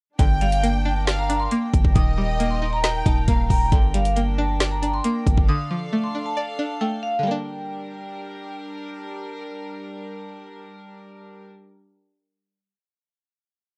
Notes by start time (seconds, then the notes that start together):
0.19 G1 D3 D4 A#4 G5, kick, closed hi-hat
0.41 G3 F5, closed hi-hat
0.52 closed hi-hat
0.63 A#3 G5, closed hi-hat
0.85 D4 A5
1.07 D5 F5, snare, closed hi-hat
1.19 A#5
1.29 D4, closed hi-hat
1.40 C6
1.51 A#3 D6, closed hi-hat
1.74 G1, kick, closed hi-hat
1.85 G1, kick
1.95 D#1 D#3 D#4 D#5 D#6, kick, closed hi-hat
2.18 G3 D6
2.40 A#3, closed hi-hat
2.51 C6
2.62 D#4
2.73 A#5
2.84 D#5 G5, snare, closed hi-hat
3.06 D#1 D#4 A5, kick, closed hi-hat
3.28 D#1 A#3 F5 A#5, kick, closed hi-hat
3.50 D#1 G5 A#5, kick, open hi-hat
3.72 G1 D3 D4 G5, kick, closed hi-hat
3.94 G3 F5, closed hi-hat
4.05 closed hi-hat
4.16 A#3 G5, closed hi-hat
4.38 D4 A5
4.60 D5, snare, closed hi-hat
4.71 A#5
4.82 D4, closed hi-hat
4.94 C6
5.04 A#3 D6, closed hi-hat
5.27 G1, kick, closed hi-hat
5.38 G1, kick
5.49 D3 D4 A4 F5 D#6
5.71 F3 D6
5.93 A3
6.04 C6
6.15 D4
6.26 A5
6.37 D5
6.59 D4
6.81 A3 G5
7.03 F5
7.19 D3
7.23 G3 D4 A#4 G5
7.27 A#3
7.31 D4